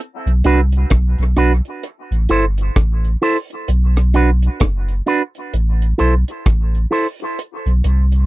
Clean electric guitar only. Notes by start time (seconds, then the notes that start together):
0.45 D4 F#4 B4
1.36 D4 F#4 B4
2.29 E4 A4 C5
3.22 E4 A4 C5
4.14 D4 F#4 B4
5.06 D4 F#4 B4
5.98 E4 A4 C5
6.91 E4 A4 C5